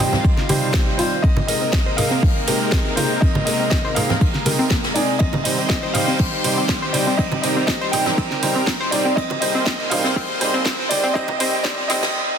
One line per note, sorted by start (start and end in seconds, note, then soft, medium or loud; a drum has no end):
0.00 0.11 C3 medium
0.00 1.20 C3 medium
0.00 1.20 D#3 medium
0.00 0.11 G3 medium
0.00 1.20 G3 medium
0.00 0.11 C4 medium
0.00 0.11 D#4 medium
0.00 1.20 D#4 medium
0.00 1.22 F4 medium
0.00 0.11 C5 medium
0.00 0.45 G5 loud
0.00 open hi-hat loud
0.00 ride medium
0.00 low conga medium
0.00 high woodblock medium
0.13 0.16 C4 medium
0.13 snare soft
0.13 low conga medium
0.24 kick loud
0.24 ride medium
0.37 snare soft
0.37 high conga medium
0.49 0.96 C3 medium
0.49 0.96 G3 medium
0.49 0.96 C4 medium
0.49 0.96 D#4 medium
0.49 0.53 G4 medium
0.49 0.96 C5 medium
0.49 open hi-hat loud
0.49 ride medium
0.49 high conga loud
0.74 0.83 C4 medium
0.74 kick loud
0.74 snare loud
0.74 ride medium
0.98 1.10 G3 medium
0.98 1.10 C4 medium
0.98 1.10 D#4 medium
0.98 1.02 F4 medium
0.98 1.21 C5 medium
0.98 1.10 C5 medium
0.98 open hi-hat loud
0.98 ride medium
1.22 5.17 C3 medium
1.22 5.17 G#3 medium
1.22 5.17 A#3 medium
1.22 1.30 C4 medium
1.22 5.16 D#4 medium
1.22 5.17 A#4 medium
1.22 1.46 D#5 loud
1.22 kick loud
1.22 ride medium
1.37 ride soft
1.37 high conga medium
1.37 low conga loud
1.47 1.60 C3 medium
1.47 1.60 G#3 medium
1.47 1.60 C4 medium
1.47 1.60 D#4 medium
1.47 1.60 A#4 medium
1.47 1.70 D#5 medium
1.47 open hi-hat loud
1.47 ride medium
1.61 1.67 C4 medium
1.61 ride soft
1.72 1.98 D#5 loud
1.72 kick loud
1.72 snare loud
1.72 ride medium
1.86 1.92 C5 loud
1.86 ride soft
1.97 2.09 C3 medium
1.97 2.09 G#3 medium
1.97 2.09 C4 medium
1.97 2.09 D#4 medium
1.97 2.09 A#4 medium
1.97 2.43 F5 loud
1.97 open hi-hat loud
1.97 ride medium
1.97 low conga medium
1.97 high woodblock medium
2.11 2.14 C4 medium
2.11 snare soft
2.23 kick loud
2.23 open hi-hat medium
2.47 2.94 C3 medium
2.47 2.94 G#3 medium
2.47 2.94 C4 medium
2.47 2.94 D#4 medium
2.47 2.51 G4 medium
2.47 2.94 A#4 medium
2.47 open hi-hat loud
2.47 ride medium
2.72 2.81 C4 medium
2.72 kick loud
2.72 snare loud
2.72 ride medium
2.96 3.08 C3 medium
2.96 3.08 G#3 medium
2.96 3.08 C4 medium
2.96 3.08 D#4 medium
2.96 3.01 F4 medium
2.96 3.08 A#4 medium
2.96 3.22 C5 medium
2.96 open hi-hat loud
2.96 ride medium
2.96 high conga medium
3.21 3.28 C4 medium
3.21 3.44 D#5 loud
3.21 kick loud
3.21 ride medium
3.34 ride soft
3.34 high conga medium
3.34 low conga loud
3.45 3.58 C3 medium
3.45 3.58 G#3 medium
3.45 3.58 C4 medium
3.45 3.58 D#4 medium
3.45 3.58 A#4 medium
3.45 3.69 D#5 medium
3.45 open hi-hat loud
3.45 ride medium
3.60 3.65 C4 medium
3.70 3.97 D#5 loud
3.70 kick loud
3.70 snare loud
3.70 ride medium
3.84 3.90 C5 loud
3.84 ride soft
3.95 4.07 C3 medium
3.95 4.07 G#3 medium
3.95 4.07 C4 medium
3.95 4.07 D#4 medium
3.95 4.07 A#4 medium
3.95 4.42 F5 loud
3.95 open hi-hat loud
3.95 ride medium
3.95 low conga medium
3.95 high woodblock medium
4.09 4.13 C4 medium
4.09 snare soft
4.09 low conga medium
4.21 kick loud
4.21 ride medium
4.34 snare soft
4.34 high conga medium
4.45 4.57 C3 loud
4.45 4.52 G3 medium
4.45 4.57 G#3 medium
4.45 4.57 C4 medium
4.45 4.57 D#4 medium
4.45 4.57 A#4 loud
4.45 open hi-hat loud
4.45 ride medium
4.45 high conga medium
4.59 4.64 C4 loud
4.70 4.77 A#3 medium
4.70 kick loud
4.70 snare loud
4.70 ride medium
4.84 snare loud
4.84 ride medium
4.94 5.13 G#3 medium
4.94 5.13 C4 medium
4.94 4.99 D#4 medium
4.94 5.13 D#4 medium
4.94 5.13 G#4 medium
4.94 5.20 D5 medium
4.94 open hi-hat loud
4.94 ride medium
5.19 12.11 D#3 medium
5.19 9.13 G3 medium
5.19 12.11 C4 medium
5.19 5.26 C4 medium
5.19 9.13 G4 medium
5.19 7.17 C5 medium
5.19 5.42 D#5 loud
5.19 kick loud
5.19 ride medium
5.33 ride soft
5.33 high conga loud
5.33 low conga medium
5.44 5.56 C3 medium
5.44 5.56 G3 medium
5.44 5.56 C4 medium
5.44 5.56 D#4 medium
5.44 5.56 C5 medium
5.44 5.67 D#5 medium
5.44 open hi-hat loud
5.44 ride medium
5.58 5.64 C4 medium
5.58 ride soft
5.69 5.95 D#5 medium
5.69 kick loud
5.69 snare loud
5.69 ride medium
5.82 5.88 C5 medium
5.82 ride soft
5.93 6.06 C3 medium
5.93 6.06 G3 medium
5.93 6.06 C4 medium
5.93 6.06 D#4 medium
5.93 6.06 C5 medium
5.93 6.40 F5 loud
5.93 open hi-hat loud
5.93 ride medium
5.93 low conga medium
5.93 high woodblock medium
6.08 6.11 C4 medium
6.08 snare soft
6.19 6.26 C4 medium
6.19 kick loud
6.19 open hi-hat medium
6.44 6.55 C3 medium
6.44 6.55 G3 medium
6.44 6.55 C4 medium
6.44 6.55 D#4 medium
6.44 6.55 C5 medium
6.44 open hi-hat loud
6.44 ride medium
6.57 6.63 C4 medium
6.69 kick loud
6.69 snare loud
6.69 ride medium
6.82 6.88 C5 medium
6.93 7.05 C3 medium
6.93 7.05 G3 medium
6.93 7.05 C4 medium
6.93 7.05 D#4 medium
6.93 7.05 C5 medium
6.93 7.19 D5 medium
6.93 open hi-hat loud
6.93 ride medium
6.93 high conga medium
7.07 7.10 C4 medium
7.17 7.25 C4 medium
7.17 9.15 A#4 loud
7.17 7.40 D#5 loud
7.17 kick loud
7.17 ride medium
7.32 ride soft
7.32 high conga medium
7.32 low conga medium
7.42 7.55 C3 medium
7.42 7.55 G3 medium
7.42 7.55 C4 medium
7.42 7.55 D#4 medium
7.42 7.55 C5 medium
7.42 7.65 D#5 medium
7.42 open hi-hat loud
7.42 ride medium
7.57 7.62 C4 medium
7.67 7.93 D#5 medium
7.67 kick loud
7.67 snare loud
7.67 ride medium
7.81 7.87 C5 loud
7.81 ride soft
7.92 8.04 C3 medium
7.92 8.04 G3 medium
7.92 8.04 C4 medium
7.92 8.04 D#4 medium
7.92 8.04 C5 medium
7.92 8.38 G5 loud
7.92 open hi-hat loud
7.92 ride medium
7.92 low conga medium
7.92 high woodblock medium
8.06 8.09 C4 medium
8.06 snare soft
8.06 low conga medium
8.18 8.24 C4 medium
8.18 kick loud
8.18 ride medium
8.31 snare soft
8.31 high conga medium
8.43 8.54 C3 medium
8.43 8.54 G3 medium
8.43 8.54 C4 medium
8.43 8.54 D#4 medium
8.43 8.54 C5 medium
8.43 open hi-hat loud
8.43 ride medium
8.43 high conga medium
8.56 8.61 C4 medium
8.67 kick loud
8.67 snare loud
8.67 ride medium
8.81 8.86 C5 loud
8.91 9.03 C3 medium
8.91 9.03 G3 medium
8.91 9.03 C4 medium
8.91 9.03 D#4 medium
8.91 9.03 C5 medium
8.91 9.17 D5 medium
8.91 open hi-hat loud
8.91 ride medium
9.05 9.09 C4 medium
9.16 12.12 C2 medium
9.16 12.12 A#3 medium
9.16 9.23 C4 medium
9.16 11.14 G#4 medium
9.16 12.12 C5 medium
9.16 9.39 D#5 loud
9.16 kick loud
9.16 ride medium
9.30 ride soft
9.30 high conga medium
9.30 low conga medium
9.40 9.53 C3 medium
9.40 9.53 G3 medium
9.40 9.53 C4 medium
9.40 9.53 D#4 medium
9.40 9.53 C5 medium
9.40 9.64 D#5 medium
9.40 open hi-hat loud
9.40 ride medium
9.55 9.60 C4 medium
9.55 ride soft
9.65 9.73 C4 medium
9.65 9.92 D#5 loud
9.65 kick loud
9.65 snare loud
9.65 ride medium
9.80 ride soft
9.90 10.02 C3 medium
9.90 10.02 G3 medium
9.90 10.02 C4 medium
9.90 10.02 D#4 medium
9.90 10.02 C5 medium
9.90 10.37 F5 loud
9.90 open hi-hat loud
9.90 ride medium
9.90 low conga medium
9.90 high woodblock medium
10.05 10.10 C4 medium
10.05 snare soft
10.16 10.22 C4 medium
10.16 kick loud
10.16 open hi-hat medium
10.41 10.52 C3 medium
10.41 10.52 G3 medium
10.41 10.52 C4 medium
10.41 10.52 D#4 medium
10.41 10.52 C5 medium
10.41 open hi-hat loud
10.41 ride medium
10.54 10.59 C4 medium
10.66 10.72 C4 medium
10.66 kick loud
10.66 snare loud
10.66 ride medium
10.89 11.02 C3 medium
10.89 11.02 G3 medium
10.89 11.02 C4 medium
10.89 11.02 D#4 medium
10.89 11.02 C5 medium
10.89 11.15 D5 loud
10.89 open hi-hat loud
10.89 ride medium
10.89 high conga medium
11.04 11.09 C4 medium
11.14 11.26 C3 medium
11.14 11.26 G3 medium
11.14 11.26 C4 medium
11.14 11.21 C4 medium
11.14 11.26 D#4 medium
11.14 12.14 G4 medium
11.14 11.26 C5 medium
11.14 11.37 D#5 loud
11.14 kick loud
11.14 ride medium
11.28 ride soft
11.28 high conga loud
11.28 low conga loud
11.38 11.51 C3 medium
11.38 11.51 G3 medium
11.38 11.51 C4 medium
11.38 11.46 C4 medium
11.38 11.51 D#4 medium
11.38 11.51 C5 medium
11.38 11.65 D#5 loud
11.38 open hi-hat loud
11.38 ride medium
11.63 11.76 C3 medium
11.63 11.76 G3 medium
11.63 11.76 C4 medium
11.63 11.71 C4 medium
11.63 11.76 D#4 medium
11.63 11.76 C5 medium
11.63 11.90 D5 loud
11.63 kick loud
11.63 snare loud
11.63 ride loud
11.78 ride soft
11.88 12.01 C3 medium
11.88 12.01 G3 medium
11.88 12.01 C4 medium
11.88 11.96 C4 medium
11.88 12.01 D#4 medium
11.88 12.01 C5 medium
11.88 12.35 D#5 loud
11.88 snare loud
11.88 open hi-hat loud
11.88 ride medium
11.88 low conga medium
11.88 high woodblock medium
12.03 snare loud
12.03 ride medium
12.03 low conga medium